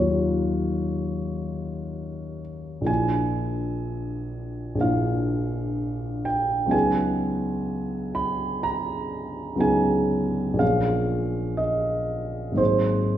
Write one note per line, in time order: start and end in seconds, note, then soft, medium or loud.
0.00 2.90 D#2 soft
0.00 2.90 F#3 soft
0.00 2.84 A#3 soft
0.00 2.90 D#4 soft
0.00 2.90 F4 soft
0.00 2.39 C#5 soft
0.00 2.91 F5 medium
2.81 4.73 A#1 soft
2.81 4.74 F3 soft
2.81 4.75 A#3 soft
2.85 4.76 D4 soft
2.85 4.76 E4 soft
2.85 4.80 G#5 medium
4.75 6.66 A#1 soft
4.75 6.67 F3 soft
4.75 6.67 A#3 soft
4.80 6.68 D4 soft
4.80 6.69 E4 soft
4.80 6.25 F5 medium
6.25 6.73 G5 medium
6.66 9.54 C#2 soft
6.66 9.55 F#3 soft
6.66 9.56 B3 soft
6.70 9.57 D#4 soft
6.70 9.57 G#4 soft
6.70 8.15 G#5 medium
8.15 8.64 B5 medium
8.63 9.61 A#5 medium
9.56 10.55 C#2 soft
9.56 10.55 F#3 soft
9.56 10.56 B3 soft
9.60 10.57 D#4 soft
9.60 10.58 G#4 soft
9.60 10.60 G#5 medium
10.53 12.52 A#1 soft
10.53 12.53 F3 soft
10.53 12.53 A#3 soft
10.57 12.54 C#4 soft
10.57 12.55 G#4 soft
10.57 11.59 F5 medium
11.57 12.58 D#5 medium
12.52 13.18 G#1 soft
12.52 13.18 F#3 soft
12.52 13.18 A#3 soft
12.57 13.18 D#4 soft
12.57 13.18 G#4 soft
12.57 13.18 C5 medium